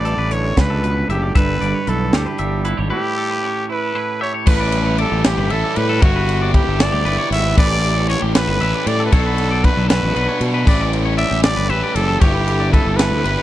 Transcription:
Already playing: A1 A2 D3 G3 D5
0.05 A4, closed hi-hat
0.17 A1 B4
0.31 D3 C#5, closed hi-hat
0.56 C#2 C#3 B4, kick, snare, closed hi-hat
0.70 A4
0.82 B2 B4, closed hi-hat
1.08 F#1 A2 G4 E5, closed hi-hat
1.22 D5
1.34 G1 G2 G3 B4 E5, kick, closed hi-hat
1.61 G1 D5, closed hi-hat
1.74 C#5
1.87 B1 E3 A4 B4, closed hi-hat
2.13 D2 D4 G4 A4, snare, closed hi-hat
2.26 B4
2.38 G1 G2 G3 E5, closed hi-hat
2.65 E4 B4, closed hi-hat
2.77 G#1 G4 C#5
2.90 A2 E4 G4 B4
3.18 A4
3.30 B4
3.43 C#4 C#5
3.69 E4 B4
3.83 A4
3.95 A2 E4 B4
4.21 G4 C#5 E5
4.34 C#5
4.46 A1 A2 E3 G3 C#4 E4 B4, kick, crash
4.60 D5
4.72 ride
4.86 C#5
4.98 A4 D5, ride
5.12 A1 G4
5.24 G4, snare, ride
5.37 G1 B4
5.50 A1 A2 E3 G3 C#4 E4 A4 E5, ride
5.64 D5
5.76 A2 B4, ride
5.89 A4
6.01 G1 G3 B3 E4 F#4 G4 C#5, kick, ride
6.16 B4
6.29 ride
6.42 D5
6.53 G4 B4, kick, ride
6.67 G1 A4
6.80 D5, snare, ride
6.92 D2 G4
7.05 G1 G3 B3 E4 G4 B4, ride
7.19 C#5
7.31 G#1 E5, ride
7.45 B4
7.55 A1 A2 E3 G3 C#4 G4 B4 D5, kick, crash
7.70 D5
7.84 ride
7.97 C#5
8.09 C#5 D5, ride
8.22 A1 G4
8.35 B4, snare, ride
8.47 G1 B4
8.60 A1 A2 E3 G3 C#4 G4 E5, ride
8.75 D5
8.86 A2 D5, ride
9.00 A4
9.06 B4
9.11 B1 B2 F#3 B3 D4 F#4 A4 C#5, kick, ride
9.26 B4
9.38 ride
9.51 D5
9.64 B4, kick, ride
9.77 B1 A4
9.89 B4, snare, ride
10.03 A1 F#4
10.14 B1 B2 F#3 B3 D4 F#4 B4, ride
10.29 C#5
10.41 B2, ride
10.54 B4
10.66 A1 A2 E3 G3 C#4 G4 B4 D5, kick, crash
10.81 D5
10.93 ride
11.05 C#5
11.18 D5 E5, ride
11.31 A1 G4
11.43 D5, snare, ride
11.57 G1 B4
11.69 A1 A2 E3 G3 C#4 G4 B4 E5, ride
11.83 D5
11.95 F#1 A4, ride
12.08 A4
12.20 G1 G3 B3 E4 G4 C#5, kick, ride
12.24 G4
12.34 B4
12.47 ride
12.60 D5
12.72 A4 B4, kick, ride
12.85 G1 A4
12.96 B4, snare, ride
13.11 D2 G4
13.24 G1 G3 B3 E4 G4 B4, ride
13.38 C#5

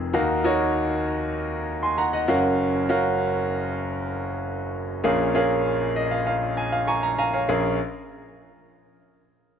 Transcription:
Already playing: F1 F2 A#4
0.13 D#2 D#3 D#4 F#4 A#4 F5
0.44 D#4 F#4 A#4 C#5
1.83 G#5 C6
1.98 F#5 A#5
2.13 D#5 F#5
2.28 F#1 F#2 C#4 F#4 A#4 F5
2.89 C#4 F#4 A#4 F5
5.04 A#1 A#2 C#4 G#4 A#4 F5
5.35 C#4 G#4 A#4 F5
5.96 D#5
6.11 F5
6.27 F5
6.57 G#5
6.72 F5
6.87 G#5 A#5 C#6
7.03 A#5
7.18 F5 G#5 A#5
7.33 C#5 F5
7.49 A#1 C#4 G#4 A#4 F5

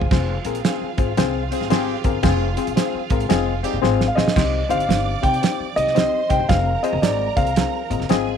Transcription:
0.01 G1, floor tom
0.11 F1 G#3 C4 F4 G#4 C5 F5, kick, snare, crash
0.45 A#1 C4 F4 G#4 A#4, closed hi-hat
0.55 closed hi-hat
0.64 C4 F4 G#4 C5, snare, closed hi-hat
0.81 muted upright bass stroke
0.98 G#1 G#3 C4 F4 G#4 C5, kick, closed hi-hat
1.17 C2 G#3 C4 F4 G#4 C5, snare, closed hi-hat
1.51 C4 F4 G#4 C5, closed hi-hat
1.61 G#1, snare
1.70 G#3 C4 F4 G4 G#4 C5, snare, closed hi-hat
2.04 G1 C4 F4 G#4 A#4, kick, closed hi-hat
2.23 F1 G#3 C4 F4 G#4 C5, kick, snare, closed hi-hat
2.57 C4 F4 G#4 C5, closed hi-hat
2.67 A#1, closed hi-hat
2.76 C4 F4 G#4 C5, snare, closed hi-hat
2.94 muted upright bass stroke
3.10 G#1 G#3 C4 F4 G#4 A#4, kick, closed hi-hat
3.20 closed hi-hat
3.29 F1 G#3 C4 F4 G#4 D#5, snare, closed hi-hat
3.63 C4 D#4 F4 G4 G#4 D5, closed hi-hat
3.73 G1
3.82 G#1 C4 F4 G#4 C5, snare
4.01 snare
4.08 F5
4.15 A#1 C4 F4 G#4 C5 D#5, snare
4.28 snare
4.36 C2 C3 C4 D#4 G4 C5 D5 D6, kick, snare, crash
4.69 G1 C4 D#4 G4 C5 F5, closed hi-hat
4.80 closed hi-hat
4.88 G1 C4 D#4 G4 C5, snare, closed hi-hat
5.22 C3 C4 D#4 G4 C5 G5, kick, closed hi-hat
5.34 closed hi-hat
5.41 C4 D#4 G4 C5, snare, closed hi-hat
5.60 muted upright bass stroke
5.76 C2 C4 D#4 G4 D#5, closed hi-hat
5.87 snare
5.95 C4 D#4 G4 C5 C6, snare, closed hi-hat
6.29 C2 C4 D#4 G4 C5 G5, kick, closed hi-hat
6.39 G1
6.49 F1 C4 F4 G#4 A#4 C5 F5 A#5, kick, snare, closed hi-hat
6.83 C4 F4 G#4 C5 D#5, closed hi-hat
6.93 F1
7.02 G#1 C4 F4 G#4 C5 D5, snare, closed hi-hat
7.36 C2 C4 F4 G#4 C5 F5, kick, closed hi-hat
7.47 closed hi-hat
7.56 C4 F4 G#4 C5, snare, closed hi-hat
7.90 G#1 C4 F4 G#4 D#5, closed hi-hat
8.00 F1, snare
8.09 G#1 C4 F4 G#4 D#5 G#5, snare, closed hi-hat

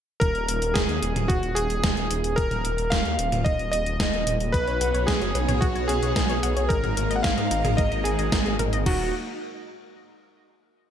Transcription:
0.20 D#1 A#4, kick, closed hi-hat
0.35 D#1, closed hi-hat
0.48 D#1, closed hi-hat
0.62 D#1, closed hi-hat
0.74 D#1 G#4, kick, snare, closed hi-hat
0.89 D#2, closed hi-hat
1.02 D#1, closed hi-hat
1.16 D#1, closed hi-hat, mid tom
1.28 D#1 F#4, kick, closed hi-hat
1.43 D#1, closed hi-hat
1.55 D#1 G#4, closed hi-hat
1.70 D#1, closed hi-hat
1.84 D#1, kick, snare, closed hi-hat
1.97 D#1, closed hi-hat
2.11 D#1, closed hi-hat
2.24 D#1, closed hi-hat
2.36 D#1 A#4, kick, closed hi-hat
2.51 D#1, closed hi-hat, mid tom
2.65 D#1, closed hi-hat
2.78 D#1, closed hi-hat
2.90 D#1 F5, kick, snare, closed hi-hat
3.05 D#2, closed hi-hat
3.19 D#1, closed hi-hat
3.32 D#1, closed hi-hat, mid tom
3.44 D#1 D#5, kick, closed hi-hat
3.59 D#1, closed hi-hat
3.72 D#1 D#5, closed hi-hat
3.86 D#1, closed hi-hat
4.00 D#1, kick, snare, closed hi-hat
4.13 D#1, closed hi-hat
4.27 D#1, closed hi-hat, mid tom
4.40 D#1, closed hi-hat
4.52 B1 B3 C#4 F#4 B4 C#5, kick, closed hi-hat
4.67 B1 C#5, closed hi-hat
4.81 B1 F#5, closed hi-hat
4.94 B1 C#5, closed hi-hat
5.07 B1 C#4 G#4, kick, snare, closed hi-hat
5.21 F#1 F#4, closed hi-hat
5.35 B1 B4, closed hi-hat
5.48 B1 C#5, closed hi-hat, mid tom
5.61 B1 F#4 F#5, kick, closed hi-hat
5.75 B1 C#5, closed hi-hat
5.88 B1 C#4 G#4, closed hi-hat
6.03 B1 F#4, closed hi-hat
6.16 B1 B4, kick, snare, closed hi-hat
6.29 B1 C#5, closed hi-hat
6.43 B1 F#5, closed hi-hat
6.57 B1 C#5, closed hi-hat
6.69 G#1 G#3 A#3 D#4 A#4, kick, closed hi-hat
6.84 G#1 G#4, closed hi-hat, mid tom
6.97 G#1 A#4, closed hi-hat
7.11 G#1 D#5, closed hi-hat
7.16 F#5
7.23 G#1 F5 G#5, kick, snare, closed hi-hat
7.38 G#2 D#5, closed hi-hat
7.51 G#1 D#4, closed hi-hat
7.65 G#1 G#4, closed hi-hat, mid tom
7.77 G#1 A#4 D#5, kick, closed hi-hat
7.92 G#1 D#5, closed hi-hat
8.04 G#1 G#4 G#5, closed hi-hat
8.19 G#1 D#5, closed hi-hat
8.32 G#1 D#4, kick, snare, closed hi-hat
8.46 G#1 G#4, closed hi-hat
8.59 G#1 A#4, closed hi-hat, mid tom
8.73 G#1 D#5, closed hi-hat
8.86 D#1 A#3 D#4 F#4 D#5, kick, crash

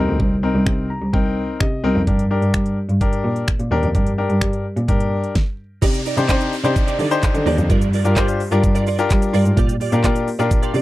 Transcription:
Already playing: C4 D#4 A#4
0.08 D2
0.20 C2, kick
0.43 C4 D#4 A#4
0.55 C2
0.67 C3, finger snap, kick
0.90 A#5
1.02 C2
1.13 C2 C4 D#4 A#4 G5, kick
1.60 C3 D#5, finger snap, kick
1.84 C2 C4 D#4 A#4
1.96 F2
2.07 G2 D4 G4 A#4, kick, closed hi-hat
2.19 closed hi-hat
2.30 D4 G4 A#4
2.42 G2, closed hi-hat
2.54 G3, finger snap, kick, closed hi-hat
2.66 closed hi-hat
2.89 G2, closed hi-hat
3.01 D4 G4 A#4, kick, closed hi-hat
3.13 closed hi-hat
3.24 A#2
3.36 closed hi-hat
3.48 finger snap, kick, closed hi-hat
3.59 A#2, closed hi-hat
3.71 D#2 D4 G4 A#4
3.83 F2, closed hi-hat
3.94 G2 D4 G4 A#4, kick, closed hi-hat
4.07 closed hi-hat
4.18 D4 G4 A#4
4.30 G2, closed hi-hat
4.41 G3, finger snap, kick, closed hi-hat
4.53 closed hi-hat
4.77 A#2, closed hi-hat
4.88 G2 D4 G4 A#4, kick, closed hi-hat
5.00 closed hi-hat
5.24 closed hi-hat
5.35 kick, snare
5.82 C3 D#4 G4 D5, kick, closed hi-hat, crash, downlifter, shaker
5.94 closed hi-hat, shaker
6.05 D#4 G4 D5, open hi-hat, shaker
6.17 C3 D4 D#4 G4 C5 D5, closed hi-hat, shaker
6.29 C4 D4 D#4 G4 C5 D5, kick, clap, closed hi-hat, shaker
6.41 muted clean electric guitar stroke, closed hi-hat, shaker
6.52 muted clean electric guitar stroke, open hi-hat, shaker
6.64 C3 D4 D#4 G4 C5 D5, closed hi-hat, shaker
6.76 muted clean electric guitar stroke, kick, closed hi-hat, shaker
6.87 D#4 G4 D5, closed hi-hat, shaker
6.99 D3 D#4 G4 D5, open hi-hat, shaker
7.11 D4 D#4 G4 C5, muted clean electric guitar stroke, closed hi-hat, shaker
7.23 muted clean electric guitar stroke, kick, clap, closed hi-hat, shaker
7.34 D3, muted clean electric guitar stroke, closed hi-hat, shaker
7.46 D#2 D#4 G4 D5, open hi-hat, shaker
7.58 F2, muted clean electric guitar stroke, closed hi-hat, shaker
7.69 G2 F4 A#4 D5, kick, closed hi-hat, shaker
7.82 closed hi-hat, shaker
7.93 F4 A#4 D5, open hi-hat, shaker
8.05 G2 D4 F4 G4 A#4 D5, closed hi-hat, shaker
8.16 G3 D4 F4 G4 A#4 C5 D5, kick, clap, closed hi-hat, shaker
8.28 muted clean electric guitar stroke, closed hi-hat, shaker
8.40 muted clean electric guitar stroke, open hi-hat, shaker
8.51 G2 D4 F4 G4 A#4 D5, closed hi-hat, shaker
8.63 G2, muted clean electric guitar stroke, kick, closed hi-hat, shaker
8.75 F4 A#4 D5, closed hi-hat, shaker
8.87 F4 A#4 D5, open hi-hat, shaker
8.98 D4 F4 G4 A#4, muted clean electric guitar stroke, closed hi-hat, shaker
9.10 G3, muted clean electric guitar stroke, kick, clap, closed hi-hat, shaker
9.22 muted clean electric guitar stroke, closed hi-hat, shaker
9.33 G2 F4 A#4 D5, open hi-hat, shaker
9.45 G#2, muted clean electric guitar stroke, closed hi-hat, shaker
9.57 A#2 F4 G4 D5, kick, closed hi-hat, shaker
9.69 closed hi-hat, shaker
9.80 F4 G4 D5, open hi-hat, shaker
9.92 A#2 D4 F4 G4 A#4 D5, closed hi-hat, shaker
10.04 A#3 D4 F4 G4 A#4 D5, kick, clap, closed hi-hat, shaker
10.15 muted clean electric guitar stroke, closed hi-hat, shaker
10.27 muted clean electric guitar stroke, open hi-hat, shaker
10.39 A#2 D4 F4 G4 A#4 D5, closed hi-hat, shaker
10.51 muted clean electric guitar stroke, kick, closed hi-hat, shaker
10.62 F4 G4 D5, closed hi-hat, shaker
10.74 C3 F4 G4 D5, open hi-hat, shaker

